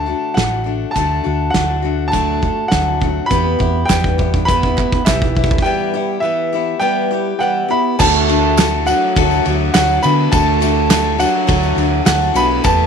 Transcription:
Already playing: D2 D3 A5
0.06 A3 D4 F#4
0.34 A1 F#3 A3 D4 F#4 F#5, kick, snare, closed hi-hat
0.64 A3 D4 F#4
0.91 D3 A5
0.95 D2 F#3 A3 D4 F#4, kick, closed hi-hat
1.24 D2 A3 D4 F#4
1.50 D2 F#3 F#5, snare, closed hi-hat
1.55 A3 D4 F#4, kick
1.82 A3 D4 F#4
2.08 D3 A3 A5
2.12 F#3 A3 D4 F#4, kick, closed hi-hat
2.42 A3 D4 F#4, kick
2.68 D2 F#3 F#5, kick, snare, closed hi-hat
2.72 A3 D4 F#4
3.00 A3 D4 F#4, kick
3.26 E3 B3 B5
3.30 E2 B3 E4 G4, kick, closed hi-hat
3.59 E2 B3 E4 G4, kick
3.85 E2 E3 G3 B3 G5
3.90 E4 G4, kick, snare, clap, closed hi-hat, tambourine
4.04 kick
4.18 B3 E4 G4, kick
4.34 kick
4.45 E3 B3 E4 B5, kick, closed hi-hat
4.49 G4
4.63 kick
4.76 B3 E4 G4, kick, clap
4.92 kick
5.05 B1 E3 B3 E4 G4 E5, kick, snare, clap, closed hi-hat, tambourine
5.22 kick
5.35 B3 E4 G4, kick
5.44 kick
5.51 kick
5.58 G3 G5, kick
5.64 E3 B3 E4 G4
5.94 B3 E4 G4
6.20 E3 B3 E5
6.25 E4 G4
6.53 B3 E4 G4
6.79 E3 G3 B3 E4 G4 G5
7.11 B3 E4 G4
7.37 E3 G3 B3 F#5 G5
7.42 E4 G4
7.68 B3 E4 G4 B5
7.99 D2 D3 F#3 A3 D4 F#4 A5, kick, crash, tambourine
8.28 A3 D4 F#4, ride
8.57 F#3 A3 D4 F#4, snare, clap, ride, tambourine
8.86 F#3 A3 D4 F#4 F#5, ride, tambourine
9.16 D2 D3 F#3 A3 D4 F#4, kick, ride
9.31 tambourine
9.45 D2 A3 D4 F#4, ride
9.74 D2 F#3 A3 D4 F#4 F#5, snare, clap, ride, tambourine
9.89 tambourine
10.02 D3 A3 B3 D4 F#4 B5, ride, tambourine
10.31 D2 D3 F#3 A3 D4 F#4 A5, kick, ride, tambourine
10.60 A3 D4 F#4, ride, tambourine
10.89 F#3 A3 D4 F#4, snare, clap, ride, tambourine
11.18 F#3 A3 D4 F#4 F#5, ride, tambourine
11.47 D2 D3 F#3 A3 D4 F#4, kick, ride
11.63 tambourine
11.76 D2 A3 D4 F#4, ride
12.05 D2 F#3 A3 D4 F#4 F#5, snare, clap, ride, tambourine
12.21 tambourine
12.34 B1 A3 B3 D4 F#4 B5, ride, tambourine
12.64 E2 E3 A3 B3 E4 G4 A5, kick, ride, tambourine

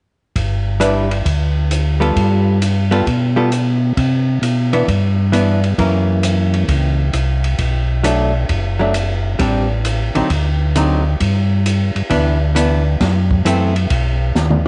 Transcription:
0.36 G1, kick, ride
0.80 G3 D4 E4 B4, hi-hat pedal, ride
1.11 ride
1.25 D2, kick, ride
1.71 hi-hat pedal, ride
2.00 G3 B3 F4 A4, ride
2.16 G2, kick, ride
2.62 hi-hat pedal, ride
2.91 G3 B3 F4 A4, ride
3.07 B2, kick, ride
3.36 G3 B3 F4 A4
3.52 hi-hat pedal, ride
3.97 C3, kick, ride
4.42 B2, hi-hat pedal, ride
4.73 E3 B3 D4, ride
4.88 G2, kick, ride
5.32 E3 B3 D4, hi-hat pedal, ride
5.64 ride
5.78 F#2 E3 A#3 C#4, kick, ride
6.23 hi-hat pedal, ride
6.54 ride
6.68 C#2, kick, ride
7.13 C2, hi-hat pedal, ride
7.44 ride
7.59 B1, kick, ride
8.04 F#3 A3 D4, hi-hat pedal, ride
8.49 F#1, kick, ride
8.79 F#3 A3 D4
8.94 hi-hat pedal, ride
9.39 A1 G3 C4 D4, kick, ride
9.85 hi-hat pedal, ride
10.15 A1 D3 F#3 C4 D#4, ride
10.30 D2, kick, ride
10.76 D3 F#3 C4 D#4, hi-hat pedal, ride
11.20 G2, kick, ride
11.66 hi-hat pedal, ride
11.95 G2, ride
12.10 D2 E3 B3 D4, kick, ride
12.55 E3 B3 D4, hi-hat pedal, ride
13.00 F#2, kick, snare, ride
13.31 kick
13.45 F#2 E3 A3 C4, hi-hat pedal, ride
13.76 ride
13.90 B1, kick, ride
14.35 D#2, snare, hi-hat pedal
14.50 mid tom

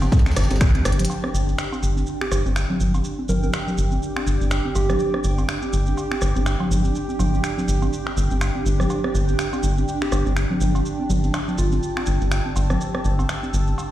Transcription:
Already playing: D4 G4 G5 A5
0.02 cowbell, high conga, maracas
0.12 kick, snare, tambourine, maracas
0.19 snare, tambourine
0.26 finger snap, snare, tambourine, high conga, maracas
0.31 snare, tambourine
0.36 G1, cross-stick, snare, closed hi-hat, ride, tambourine, maracas
0.44 snare, tambourine
0.51 G1, snare, closed hi-hat, tambourine, high conga, maracas
0.56 snare, tambourine
0.61 finger snap, kick, snare, tambourine, cowbell, maracas
0.75 closed hi-hat, high conga
0.85 G1, cross-stick, snare, closed hi-hat, tambourine, maracas
0.92 closed hi-hat
0.99 closed hi-hat, high conga, low conga, maracas
1.05 closed hi-hat
1.10 D4 G5, cowbell, maracas
1.24 G4, cross-stick, high conga
1.34 G1, maracas
1.48 high conga, maracas
1.58 finger snap, maracas
1.71 G5, cowbell, high conga, maracas
1.83 G1, maracas
1.97 high conga, maracas
2.02 D6
2.07 maracas
2.21 G4, finger snap, high conga
2.32 G1 G4, cross-stick, cowbell, maracas
2.46 G1, high conga, maracas
2.56 finger snap, maracas
2.70 high conga, low conga
2.80 G1, low conga, maracas
2.94 cowbell, high conga, maracas
3.04 maracas
3.19 high conga
3.29 G1 A#4, low conga, maracas
3.43 A#4, high conga, maracas
3.53 finger snap, cowbell, maracas
3.68 high conga, low conga, maracas
3.78 G1, maracas
3.92 high conga, maracas
4.03 maracas
4.16 finger snap, cowbell, high conga
4.27 G1, maracas
4.41 G1, high conga, maracas
4.51 finger snap, maracas
4.65 high conga
4.75 G1 G4, cowbell, maracas
4.89 cross-stick, high conga, low conga, maracas
4.99 maracas
5.14 cross-stick, high conga
5.24 G1, maracas
5.38 cowbell, high conga, maracas
5.49 finger snap, maracas
5.62 high conga, maracas
5.73 G1, maracas
5.86 high conga, maracas
5.97 cowbell, maracas
6.11 finger snap, high conga
6.21 G1, cross-stick, maracas
6.36 G1, high conga, maracas
6.46 finger snap, maracas
6.60 cowbell, high conga, low conga
6.71 G1, low conga, maracas
6.84 high conga, maracas
6.95 maracas
7.09 high conga, maracas
7.19 G1, cowbell, low conga, maracas
7.34 high conga, maracas
7.44 finger snap, maracas
7.58 high conga, low conga, maracas
7.68 G1, maracas
7.82 cowbell, high conga, maracas
7.93 maracas
8.07 finger snap, high conga
8.17 G1, maracas
8.31 G1, high conga, maracas
8.41 finger snap, cowbell, maracas
8.49 A5
8.55 high conga
8.66 G1, maracas
8.80 cross-stick, high conga, low conga, maracas
8.90 cowbell, maracas
9.04 cross-stick, high conga
9.14 G1, maracas
9.28 high conga, maracas
9.39 finger snap, maracas
9.53 cowbell, high conga, maracas
9.63 G1, maracas
9.77 high conga, maracas
9.88 maracas
10.02 G4, finger snap, high conga
10.12 G1 G4, cross-stick, cowbell, maracas
10.26 G1, high conga, maracas
10.37 finger snap, maracas
10.51 high conga, low conga
10.61 G1, low conga, maracas
10.75 cowbell, high conga, maracas
10.86 maracas
10.99 high conga
11.05 E6
11.10 G1, low conga, maracas
11.23 high conga, maracas
11.34 finger snap, cowbell, maracas
11.48 high conga, low conga, maracas
11.58 G1 F4, maracas
11.72 high conga, maracas
11.83 maracas
11.97 finger snap, cowbell, high conga
12.06 G1, maracas
12.21 G1, high conga, maracas
12.32 finger snap, maracas
12.46 high conga
12.56 G1, cowbell, maracas
12.70 cross-stick, high conga, low conga, maracas
12.81 maracas
12.95 cross-stick, high conga
13.05 G1, maracas
13.19 cowbell, high conga, maracas
13.29 finger snap, maracas
13.43 high conga, maracas
13.54 G1, maracas
13.67 high conga, maracas
13.78 cowbell, maracas

